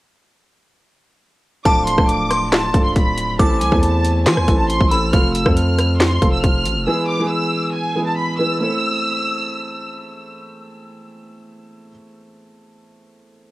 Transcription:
1.65 D1 F3 A3 D4 F4 A4 A5 D6, kick, closed hi-hat
1.87 C6, closed hi-hat
1.98 D1 F3 A3 D4 F4 A4, kick, cross-stick
2.09 D6, closed hi-hat
2.30 C6, cross-stick, closed hi-hat
2.52 A5, snare, clap, closed hi-hat
2.74 C1 F3 A3 D4 F4 A4, kick, closed hi-hat
2.85 C6
2.96 D1 B5, kick, closed hi-hat
3.18 closed hi-hat
3.39 A1 E3 A3 C4 E4 A4 A5 D6, kick, closed hi-hat
3.61 C2 G#5, closed hi-hat
3.71 E2 E3 A3 C4 E4 A4, kick
3.83 A5, closed hi-hat
4.05 closed hi-hat
4.26 E3 G#5 C6, snare, clap, closed hi-hat
4.37 E2, cross-stick
4.47 A1 E3 A3 C4 E4 A4, kick, closed hi-hat
4.59 A5
4.70 C6, closed hi-hat
4.81 A1, kick
4.91 E3 A3 C4 E4 A4 B5 E6, closed hi-hat
5.13 F1 F3 A3 C4 F4 A4 F6, kick, closed hi-hat
5.35 E6, closed hi-hat
5.45 F2 F3 A3 C4 F4 A4, kick, cross-stick
5.57 F6, closed hi-hat
5.79 cross-stick, closed hi-hat
6.00 C6, snare, clap, closed hi-hat
6.21 F1 F3 A3 C4 F4 A4, kick, closed hi-hat
6.33 E6
6.43 F1 F6, kick, closed hi-hat
6.65 A1, closed hi-hat
6.76 F1
6.87 E3 G#3 B3 E4 G#4 E6
7.08 D6
7.19 E3 G#3 B3 E4 G#4
7.30 E6
7.74 G#5
7.95 E3 G#3 B3 E4 G#4
8.07 A5
8.18 B5
8.39 E3 G#3 B3 E4 B4 E6
8.59 A3 C4 E4 E6
8.63 A4

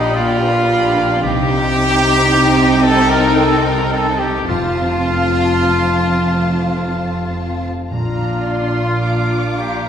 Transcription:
Already playing: A#2 D4 D#4 F4 G4 B4 D5 G5 B5
0.14 A#1 A#2 F4 D5
0.41 B4
0.68 D4 G4 B5
0.95 D4
1.22 C2 C3 C4 D#4 G4 G5
1.49 C4
1.75 D#4
2.01 C5
2.26 D#4
2.53 D#5
2.79 A4 C6
3.07 A#4 D#5
3.34 A4 C5
3.62 D#4 A#4
3.91 C4 A4
4.18 G3 G4
4.48 F1 F2 C4 F4 A5
4.77 C4
5.05 F4
5.34 A4
5.61 C5
5.90 F5
6.47 F5
6.76 C5
7.05 A4
7.34 F4
7.64 C4
7.90 A#1 A#2 D4 F4 A#5
8.20 D4
8.46 F4 C6
8.75 A#4
9.01 D4 D5 D6
9.29 F5
9.57 G4 A#5
9.85 F5

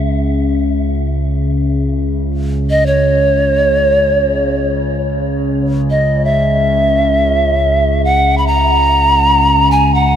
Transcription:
Already playing: C#2 C#3
2.70 D#5
2.86 C#5
4.86 C#2 C#3
5.90 D#5
6.25 E5
8.04 F#5
8.38 B5
8.47 A#5
9.71 G#5
9.94 F#5

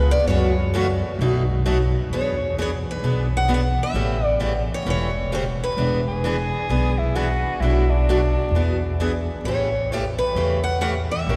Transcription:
Already playing: B4
0.11 D5
0.27 F#2 C#3 E3 A3 C#4 F#4 C#5
0.74 C#3 E3 A3 C#4 F#4
1.19 B1 B2 F#3 A3 D#4 F#4
1.66 B2 F#3 A3 D#4 F#4
2.09 E2 C#5
2.14 E3 B3 D4 G#4
2.58 E3 B3 D4 G#4 C#5
2.91 B4
3.02 B1 E3 B3 D4 G#4
3.37 F#5
3.48 E3 B3 D4 G#4
3.54 F#5
3.83 E5
3.93 A1 C#3 E3 A3 C#4 G4
4.25 D5
4.40 C#3 E3 A3 C#4 G4
4.74 C#5
4.85 E1 C#3 E3 A3 C#4 G4
4.90 C#5
5.32 C#3 E3 A3 C#4 G4 C5
5.64 B4
5.77 E1 E3 B3 D4 G#4
6.08 G#4
6.24 E3 B3 D4 G#4
6.69 B1 E3 B3 D4 G#4
6.98 E4
7.15 E3 B3 D4 F#4 G#4
7.60 B1 B2 F#3 A3 D4 E4 F#4
7.90 D4
8.09 B2 F#3 A3 D4 F#4
8.51 E2
8.55 E3 B3 D4 G#4
9.00 E3 B3 D4 G#4
9.44 A1 C#3 E3 A3 C#4 G4 C#5
9.92 C#3 E3 A3 C#4 G4
9.98 B4
10.18 B4
10.35 E2 C#3 E3 A3 C#4 G4
10.64 F#5
10.81 C#3 E3 A3 C#4 G4 F#5
11.11 E5
11.26 A#1 E3 A#3 C#4 G4 A#4

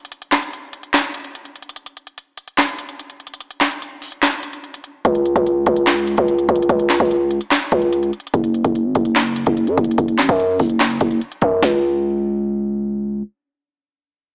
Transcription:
0.05 closed hi-hat
0.12 closed hi-hat
0.22 closed hi-hat
0.32 snare, clap, closed hi-hat
0.43 closed hi-hat
0.53 closed hi-hat
0.73 closed hi-hat
0.83 closed hi-hat
0.94 snare, clap, closed hi-hat
1.04 closed hi-hat
1.14 closed hi-hat
1.24 closed hi-hat
1.35 closed hi-hat
1.45 closed hi-hat
1.56 closed hi-hat
1.62 closed hi-hat
1.69 closed hi-hat
1.76 closed hi-hat
1.86 closed hi-hat
1.97 closed hi-hat
2.07 closed hi-hat
2.18 closed hi-hat
2.38 closed hi-hat
2.48 closed hi-hat
2.58 snare, clap, closed hi-hat
2.69 closed hi-hat
2.79 closed hi-hat
2.89 closed hi-hat
2.99 closed hi-hat
3.10 closed hi-hat
3.20 closed hi-hat
3.27 closed hi-hat
3.34 closed hi-hat
3.41 closed hi-hat
3.51 closed hi-hat
3.61 snare, clap, closed hi-hat
3.71 closed hi-hat
3.82 closed hi-hat
4.02 open hi-hat
4.12 closed hi-hat
4.23 snare, clap, closed hi-hat
4.33 closed hi-hat
4.43 closed hi-hat
4.53 closed hi-hat
4.64 closed hi-hat
4.74 closed hi-hat
4.84 closed hi-hat
5.05 C#2, kick, closed hi-hat
5.15 closed hi-hat
5.26 closed hi-hat
5.36 C#2, kick, closed hi-hat
5.47 closed hi-hat
5.66 C#2, kick, closed hi-hat
5.76 closed hi-hat
5.87 snare, clap, closed hi-hat
5.97 closed hi-hat
6.07 closed hi-hat
6.18 C#2, kick, closed hi-hat
6.28 closed hi-hat
6.39 closed hi-hat
6.49 C#2, kick, closed hi-hat
6.56 closed hi-hat
6.62 closed hi-hat
6.69 C#2, kick, closed hi-hat
6.79 closed hi-hat
6.90 snare, clap, closed hi-hat
7.00 C#2, kick, closed hi-hat
7.11 closed hi-hat
7.31 closed hi-hat
7.41 closed hi-hat
7.51 snare, clap, closed hi-hat
7.62 closed hi-hat
7.72 C#2, kick, closed hi-hat
7.82 closed hi-hat
7.93 closed hi-hat
8.03 closed hi-hat
8.13 closed hi-hat
8.20 closed hi-hat
8.27 closed hi-hat
8.34 F#1, kick, closed hi-hat
8.44 closed hi-hat
8.54 closed hi-hat
8.64 F#1, kick, closed hi-hat
8.75 closed hi-hat
8.85 G#1
8.95 F#1, kick, closed hi-hat
9.05 closed hi-hat
9.16 snare, clap, closed hi-hat
9.26 closed hi-hat
9.36 closed hi-hat
9.46 F#1, kick, closed hi-hat
9.57 closed hi-hat
9.67 F#2, closed hi-hat
9.78 F#1, kick, closed hi-hat
9.84 closed hi-hat
9.91 closed hi-hat
9.98 F#1, kick, closed hi-hat
10.08 closed hi-hat
10.18 A1, snare, clap, closed hi-hat
10.29 F#2, kick, closed hi-hat
10.40 closed hi-hat
10.60 F#1, kick, open hi-hat
10.70 closed hi-hat
10.80 snare, clap, closed hi-hat
10.91 closed hi-hat
11.01 F#1, kick, closed hi-hat
11.11 closed hi-hat
11.21 closed hi-hat
11.32 closed hi-hat
11.42 F#2, kick, closed hi-hat
11.63 C#2, kick, snare, open hi-hat

